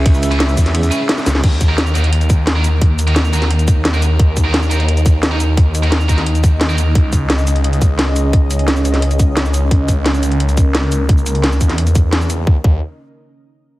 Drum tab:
CC |----------------|x---------------|----------------|----------------|
RD |x-x-x-x-x-x-x-x-|----------------|----------------|----------------|
HH |x-xxx-oxxxx-x-o-|x-x-x-xxxxx-x-x-|x-xxx-xxxxx-x-x-|x-x-x-xxxxx-x-x-|
SH |-xx--xx--xx--xx-|--x--xx--xx---x-|--x--xx--xx--xx-|--x--xx--xx---x-|
SD |----o--o----oooo|----o-------o---|----o--o----o---|----o-------o---|
BD |o-----o---------|o-o-------o-----|o---------o-----|o-o-------o-----|

CC |----------------|----------------|----------------|----------------|
RD |----------------|----------------|----------------|----------------|
HH |x-xxx-xxxxx-x-x-|x-x-x-xxxxx-x-x-|x-xxx-xxxxx-x-x-|x-x-x-xxxxx-x-x-|
SH |--x--xx--xx--xx-|--x--xx--xx---x-|--x--xx--xx--xx-|--x--xx--xx---x-|
SD |----o--o----o---|----o-------o---|----o--o----o---|----o-------o---|
BD |o-----o---o-----|o-o-------o-----|o---------o-----|o-o-------o-----|

CC |----------------|----------------|
RD |----------------|----------------|
HH |x-xxx-xxxxx-x-x-|----------------|
SH |-xx--xx--xx--xx-|----------------|
SD |----o--o----o---|----------------|
BD |o-----o---o-----|o-o-------------|